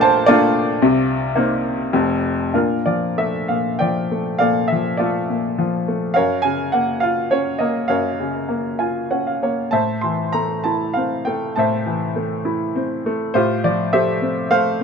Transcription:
Already playing: A#1 A#2 A3 A#3 D4 F4 A#4 D5 G5
0.01 C5 A5
0.26 A3 A#3 D4 F4 D5
0.82 C2 C3
1.36 A#3 C4 D#4
1.93 F1 F2
2.54 A#2 D4 F4 A#4
2.86 F3 D5
3.18 A3 E5
3.48 A#2 F5
3.79 F3 D5 G5
4.12 A3
4.38 A#2 A4 D5 F5
4.68 E5
4.72 F3
4.97 A3 F4 A4 D5
5.30 A#2
5.58 F3
5.88 A3
6.14 F#2 A#4 C#5 F5
6.42 C#3 G#5
6.72 A#3 F#5
7.00 F4 F5
7.31 C#4 C#5
7.59 A#3 D#5
7.88 F#2 A#4 C#5 F5
8.20 C#3
8.49 A#3
8.79 F4 G#5
9.11 C#4 F#5
9.27 F5
9.43 A#3 C#5
9.71 A2 C5 E5 A5
10.01 E3 C6
10.33 A3 A#5
10.64 E4 A5
10.94 C4 F5
11.25 A3 G5
11.56 A2 C5 E5 A5
11.86 E3
12.16 A3
12.45 E4
12.76 C4
13.06 A3
13.34 A2 F4 G4 C5
13.64 F3 D5
13.93 A3 G4 C5 E5
14.22 C4
14.51 A3 C5 F5

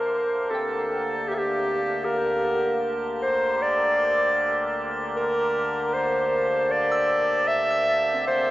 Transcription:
Already playing: D2 D3 A#3 G4 A#4 E5 A5
0.50 C4 G4 A4
0.54 G5
1.28 G4 E5
1.34 G4 A4
2.05 A#4
3.22 C5
3.62 D5
5.16 A#4
5.94 C5
6.71 D5
6.92 E6
7.48 E5
7.71 E6
8.14 C4
8.27 C5

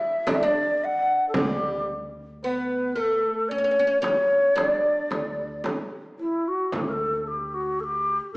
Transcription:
Already playing: E4 E5
0.27 D4 D5, darbuka tek, frame drum
0.34 E5
0.43 D4 D5
0.84 F#5
1.28 A4
1.34 D2 G3 G4, frame drum, darbuka dum
2.43 B3 B4 C5, darbuka ka
2.95 A3 A#4
2.99 A4
3.48 C#4 C#5 D5, darbuka ka
3.58 C#4
3.64 C#4
3.71 C#4
3.79 C#4
3.87 C#4
4.01 C#4 C#5, darbuka tek, frame drum
4.56 D4 C#5, darbuka tek, frame drum
4.67 D5
5.11 D2, darbuka tek, frame drum
5.64 darbuka tek, frame drum
6.19 E4, darbuka ka
6.47 F#4
6.72 D2 A4, frame drum
6.79 G4
6.88 A4 A#4
7.27 G4
7.53 F#4
7.80 G4 A4
8.33 A4

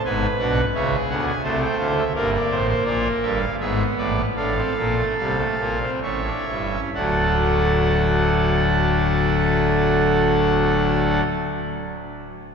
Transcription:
0.04 G#1 G#2 B3 B4 G#5
0.39 B1 B2 D4 F#5
0.74 C#2 C#3 C#4 G#4 E5
1.09 D2 D3 B3 F#5
1.26 G#5
1.43 C2 C3 A3 C5 A5
1.61 G5
1.78 D2 D3 F5
1.98 E5
2.15 G1 G2 A#3 A#4 D5
2.33 D5
2.50 A1 A2 C5
2.68 C5
2.85 A#1 A#2 A#4 D5
3.22 G1 G2 A4 E5
3.39 F5
3.59 G#1 G#2 B3 G#4 E5
3.97 A1 A2 B4 D5
4.36 A1 A2 D4 A4 F5
4.57 C4
4.77 A#1 A#2 A#3
4.97 A3
5.18 C2 C3 G3 F5
5.38 A3
5.58 A#1 A#2 A#3
5.81 C4
6.02 A1 A2 C#4 C#5 E5
6.25 D4
6.48 G1 G2 E4
6.70 C#4
6.94 D1 D2 F#3 A3 D4 A4 F#5

